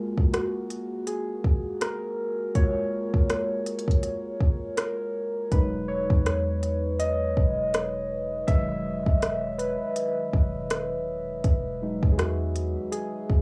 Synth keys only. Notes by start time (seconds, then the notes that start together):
Already playing: G#3 A#3 F4
0.33 F#4
1.07 G#4
1.81 A#4
2.55 G#3 A#3 F4 C#5
4.77 A#4
5.51 F#3 G#3 D#4 B4
5.88 C#5
6.99 D#5
8.47 D#3 F#3 G#3 E5
9.58 B4
11.82 F#3 G#3 D#4
12.12 G#4
12.18 F#4
12.92 G#4